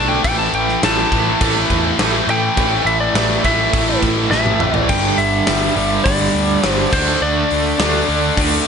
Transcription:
Already playing: picked electric bass B1, distorted electric guitar D3 A3 D4
0.08 lead electric guitar G5
0.24 picked electric bass A1, distorted electric guitar A2 E3 A3, lead electric guitar G5, kick, crash
0.39 lead electric guitar A5
0.53 picked electric bass A1, lead electric guitar G5, crash
0.69 snare
0.83 picked electric bass A1, distorted electric guitar A2 E3 A3, lead electric guitar A5, snare, crash
0.98 snare
1.12 picked electric bass A1, distorted electric guitar A2 E3 A3, kick, crash
1.41 picked electric bass A1, distorted electric guitar A2 E3 A3, kick, crash
1.70 picked electric bass E2, kick, crash
1.99 picked electric bass A1, distorted electric guitar A2 E3 A3, snare, crash
2.27 picked electric bass A2, distorted electric guitar A2 E3 A3, lead electric guitar G5, crash
2.57 picked electric bass A1, distorted electric guitar A2 E3 A3, kick, crash
2.85 picked electric bass A1, lead electric guitar E5, crash
3.00 lead electric guitar D5
3.14 picked electric bass A1, distorted electric guitar A2 E3 A3, snare, crash
3.30 snare
3.44 picked electric bass A1, distorted electric guitar A2 E3 A3, lead electric guitar E5, kick, crash
3.73 picked electric bass A1, distorted electric guitar A2 E3 A3, kick, crash
4.02 picked electric bass A1, kick, crash
4.30 picked electric bass A1, distorted electric guitar A2 E3 A3, lead electric guitar E5, snare
4.46 mid tom
4.60 picked electric bass A1, distorted electric guitar A2 E3 A3, mid tom
4.74 lead electric guitar D5, floor tom
4.88 picked electric bass G1, distorted electric guitar G2 D3 G3, lead electric guitar G5, kick, crash
5.18 picked electric bass G1, lead electric guitar E5, open hi-hat
5.46 picked electric bass G1, distorted electric guitar G2 D3 G3, snare, open hi-hat
5.75 picked electric bass G1, distorted electric guitar G2 D3 G3, open hi-hat
5.79 distorted electric guitar G2
6.04 picked electric bass G1, distorted electric guitar G2 D3 G3, lead electric guitar D5, kick, open hi-hat
6.35 picked electric bass D2, open hi-hat
6.63 picked electric bass G1, distorted electric guitar G2 D3 G3, snare, open hi-hat
6.69 lead electric guitar C5
6.92 picked electric bass D2, distorted electric guitar D3 A3 D4, lead electric guitar C5, kick, crash
7.20 picked electric bass D2, distorted electric guitar D3 A3 D4, lead electric guitar D5
7.51 picked electric bass D2, open hi-hat
7.79 picked electric bass D2, distorted electric guitar D3 A3 D4, snare, open hi-hat
8.08 picked electric bass D2, distorted electric guitar D3 A3 D4, open hi-hat
8.36 picked electric bass D2, distorted electric guitar D3 A3 D4, kick, open hi-hat

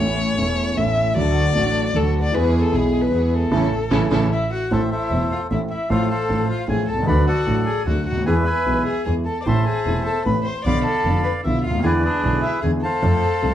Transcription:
Already playing: double bass A1, grand piano E3 A3, string section A3 C#4 E4, violin C#5
0.00 grand piano A1 A2 C#4 A4
0.35 double bass E1, grand piano E1 E2 E3 A3 C#4, string section A3 C#4 E4
0.40 grand piano A4
0.75 double bass A1, grand piano A1 A2 E3 A3 C#4 A4, string section A3 C#4 E4, violin E5
1.14 double bass D2, grand piano D2 D3 F#3 A3 D4 A4, string section A3 D4 F#4, violin D5
1.53 double bass A1, grand piano A1 A2 F#3 A3 D4, string section A3 D4 F#4
1.57 grand piano A4
1.93 double bass D2, grand piano D2 D3 F#3 A3 D4 A4, string section A3 D4 F#4, violin A4
2.22 violin D5
2.32 double bass E2, grand piano E2 E3 G#3 B3, string section B3 E4 G#4, violin B4
2.36 grand piano G#4
2.62 violin A4
2.71 double bass B1, grand piano B1 B2 E3 G#3 B3 G#4, string section B3 E4 G#4, violin G#4
3.02 violin B4
3.10 double bass E2, grand piano E2 E3 G#3 B3, string section B3 E4 G#4
3.14 grand piano G#4
3.26 violin B4
3.34 violin A4
3.51 double bass A1, grand piano C#3 E3 A3, string section C#4 E4 A4
3.91 double bass A1, grand piano C#3 E3 A3, string section C#4 E4 A4
4.11 double bass A1, grand piano C#3 E3 A3, string section C#4 E4 A4
4.32 violin E4, bandoneon E5
4.51 violin F#4, bandoneon F#5
4.71 grand piano A1 A2 E3 A3 C4 A4, double bass A1, violin A4, bandoneon C5 E5 A5
4.91 violin E4, bandoneon A4 C5 E5
5.11 double bass E1, grand piano E1 E2 E3 A3 C4 A4
5.31 violin F4, bandoneon F5
5.50 grand piano A1 A2 E3 A3 C4 A4, double bass A1, violin E4, bandoneon E5
5.70 violin E4, bandoneon E5
5.90 grand piano A1 A2 F3 A3 C4 A4, double bass A1, violin F4, bandoneon A4 C5 F5
6.10 violin A4, bandoneon C5 F5 A5
6.29 grand piano A1 A2 F3 A3 C4 A4, double bass A1
6.50 violin F4, bandoneon F5
6.68 grand piano A1 A2 F3 A3 C4 A4, double bass A1, violin G#4, bandoneon G#5
6.88 double bass C2, violin A4, bandoneon A5
6.93 grand piano B1
6.98 grand piano C2
7.03 grand piano C#2
7.07 grand piano D2 D3 F#3 A3 D4 A4, double bass D2, violin B4, bandoneon D5 F#5 B5
7.27 violin F#4, bandoneon A4 D5 F#5
7.47 double bass A1, grand piano A1 A2 F#3 A3 D4 A4
7.66 violin G#4, bandoneon G#5
7.85 double bass D2, grand piano D2 D3 F#3 A3 D4 A4, violin F#4, bandoneon F#5
8.05 double bass D2, violin F#4, bandoneon F#5
8.12 grand piano C#2
8.17 grand piano D2
8.22 grand piano D#2, bandoneon G#5
8.26 double bass E2, grand piano E2 E3 G#3 B3 G#4, violin G#4, bandoneon B4 E5
8.45 violin B4, bandoneon E5 G#5 B5
8.65 double bass B1, grand piano B1 B2 E3 G#3 B3 G#4
8.86 violin G#4, bandoneon G#5
9.05 double bass E2, grand piano E2 E3 G#3 B3 G#4, violin G#4, bandoneon G#5
9.25 violin A4, bandoneon A5
9.41 violin D5, bandoneon D6
9.45 double bass A1, grand piano A1 A2 C3 E3 A3 E4, violin C5, bandoneon E5 A5 C6
9.65 violin G#4, bandoneon C5 E5 G#5
9.86 double bass E1, grand piano E1 E2 C3 E3 A3 E4
10.05 violin A4, bandoneon A5
10.25 double bass A1, grand piano A1 A2 C3 E3 A3 E4, violin B4, bandoneon B5
10.45 violin C5, bandoneon C6
10.64 double bass B1, grand piano B1 B2 D3 F3 B3 F4, violin D5, bandoneon F5 B5 D6
10.84 violin A4, bandoneon D5 F5 A5
11.05 double bass F1, grand piano F1 F2 D3 F3 B3 F4
11.23 violin B4, bandoneon B5
11.44 grand piano B1 B2 D3 F3 B3 F4, double bass B1, violin E4, bandoneon E5
11.63 double bass D2, violin F4, bandoneon F5
11.70 grand piano C#2
11.75 grand piano D2
11.79 grand piano D#2
11.83 double bass E2, grand piano E2 D3 E3 G#3 B3 E4, violin G#4, bandoneon B4 D5 G#5
12.03 violin D4, bandoneon G#4 B4 D5
12.23 double bass B1, grand piano B1 B2 D3 G#3 B3 E4
12.42 violin E4, bandoneon E5
12.62 double bass E2, grand piano E2 D3 E3 G#3 B3 E4, violin G#4, bandoneon G#5
12.81 violin A4, bandoneon C5 F5 A5
13.02 double bass F2, grand piano F2 F3 A3 C4 A4
13.42 grand piano C2 C3 F3 A3 C4 A4, double bass C2

